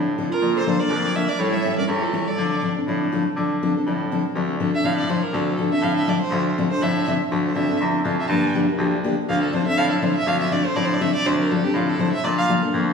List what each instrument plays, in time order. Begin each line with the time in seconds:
Already playing: baritone saxophone A2, steel-string acoustic guitar D3 F3 C4 D4 A4
0.18 steel-string acoustic guitar D3 F3 C4 D4 A4
0.30 clarinet F4, violin A#4
0.41 baritone saxophone A#2, steel-string acoustic guitar D3 F3 A#3 D4 A4
0.56 clarinet A4, violin C5
0.66 steel-string acoustic guitar D3 F3 A#3 D4 A4
0.80 steel-string acoustic guitar A#3 D4 A4, clarinet A#4, violin D5
0.89 baritone saxophone F2, steel-string acoustic guitar D3 F3 A#3 D4 A4
1.15 steel-string acoustic guitar D3 F3 A#3 D4 A4, clarinet A#4, violin E5
1.29 clarinet A#4, violin D5
1.39 baritone saxophone A2, steel-string acoustic guitar E3 G3 C#4 E4 A4, clarinet A4, violin C#5
1.52 clarinet C#5, violin E5
1.65 steel-string acoustic guitar E3 G3 C#4 E4 A4
1.77 steel-string acoustic guitar C#4 E4 A4, clarinet A#4, violin D5
1.88 baritone saxophone E2, steel-string acoustic guitar E3 G3 C#4 E4 A4, clarinet A4, violin C#5
2.03 clarinet F4, violin A4
2.13 steel-string acoustic guitar E3 G3 C#4 E4 A4, clarinet A4, violin C#5
2.26 clarinet A4, violin D5
2.37 baritone saxophone D3, steel-string acoustic guitar D3 F3 C4 D4 A4
2.62 steel-string acoustic guitar D3 F3 C4 D4 A4
2.76 steel-string acoustic guitar C4 D4 A4
2.87 baritone saxophone A2, steel-string acoustic guitar D3 F3 C4 D4 A4
3.12 steel-string acoustic guitar D3 F3 C4 D4 A4
3.36 baritone saxophone D3, steel-string acoustic guitar D3 F3 C4 D4 A4
3.62 steel-string acoustic guitar D3 F3 C4 D4 A4
3.77 steel-string acoustic guitar C4 D4 A4
3.86 baritone saxophone A2, steel-string acoustic guitar D3 F3 C4 D4 A4
4.12 steel-string acoustic guitar D3 F3 C4 D4 A4
4.35 baritone saxophone D2, steel-string acoustic guitar D3 F3 C4 D4 A4
4.60 steel-string acoustic guitar D3 F3 C4 D4 A4
4.73 steel-string acoustic guitar C4 D4 A4, violin E5
4.84 baritone saxophone A2, steel-string acoustic guitar D3 F3 C4 D4 A4, violin F5
4.98 violin D5
5.09 steel-string acoustic guitar D3 F3 C4 D4 A4, violin C5
5.23 violin A#4
5.33 baritone saxophone D2, steel-string acoustic guitar D3 F3 C4 D4 A4, violin A4
5.58 steel-string acoustic guitar D3 F3 C4 D4 A4
5.71 steel-string acoustic guitar C4 D4 A4, violin E5
5.81 baritone saxophone A2, steel-string acoustic guitar D3 F3 C4 D4 A4, violin F5
5.97 violin E5
6.07 steel-string acoustic guitar D3 F3 C4 D4 A4, violin D5
6.22 violin C5
6.30 baritone saxophone D2, steel-string acoustic guitar D3 F3 C4 D4 A4
6.58 steel-string acoustic guitar D3 F3 C4 D4 A4
6.71 steel-string acoustic guitar C4 D4 A4, violin C5
6.81 baritone saxophone A2, steel-string acoustic guitar D3 F3 C4 D4 A4, violin E5
7.07 steel-string acoustic guitar D3 F3 C4 D4 A4
7.31 baritone saxophone D2, steel-string acoustic guitar D3 F3 C4 D4 A4
7.45 violin C5
7.55 baritone saxophone D2, steel-string acoustic guitar D3 F3 C4 D4 A4, violin E5
7.69 steel-string acoustic guitar C4 D4 A4
7.80 baritone saxophone E2, steel-string acoustic guitar D3 F3 C4 D4 A4
8.04 baritone saxophone F2, steel-string acoustic guitar D3 F3 C4 D4 A4
8.20 violin E5
8.29 baritone saxophone G2, steel-string acoustic guitar D3 F3 A#3 D4 G4, violin A5
8.54 steel-string acoustic guitar D3 F3 A#3 D4 G4
8.68 steel-string acoustic guitar A#3 D4 G4
8.78 baritone saxophone D2, steel-string acoustic guitar D3 F3 A#3 D4 G4
9.04 steel-string acoustic guitar D3 F3 A#3 D4 G4
9.29 baritone saxophone D2, steel-string acoustic guitar D3 F3 C4 D4 A4, violin F5
9.43 violin A4
9.52 steel-string acoustic guitar D3 F3 C4 D4 A4, violin C5
9.66 steel-string acoustic guitar C4 D4 A4, violin E5
9.76 baritone saxophone A2, steel-string acoustic guitar D3 F3 C4 D4 A4, violin F5
9.91 violin A4
10.02 steel-string acoustic guitar D3 F3 C4 D4 A4, violin C5
10.16 violin E5
10.26 baritone saxophone D2, steel-string acoustic guitar D3 F3 C4 D4 A4, violin F5
10.41 violin E5
10.51 steel-string acoustic guitar D3 F3 C4 D4 A4, violin D5
10.65 steel-string acoustic guitar C4 D4 A4, violin C5
10.76 baritone saxophone A2, steel-string acoustic guitar D3 F3 C4 D4 A4, violin D5
10.85 violin C5
10.94 violin D5
11.00 steel-string acoustic guitar D3 F3 C4 D4 A4, violin E5
11.15 violin D5
11.25 baritone saxophone D2, steel-string acoustic guitar D3 F3 C4 D4 A4, violin C5
11.40 violin A#4
11.51 steel-string acoustic guitar D3 F3 C4 D4 A4, violin A4
11.63 steel-string acoustic guitar C4 D4 A4, violin G4
11.74 baritone saxophone A2, steel-string acoustic guitar D3 F3 C4 D4 A4, violin F4
11.89 violin A4
11.99 steel-string acoustic guitar D3 F3 C4 D4 A4, violin C5
12.13 violin E5
12.24 baritone saxophone A#2, steel-string acoustic guitar D3 F3 A#3 D4 A4, violin D5
12.38 violin F5
12.49 steel-string acoustic guitar D3 F3 A#3 D4 A4
12.63 steel-string acoustic guitar A#3 D4 A4
12.73 baritone saxophone F2, steel-string acoustic guitar D3 F3 A#3 D4 A4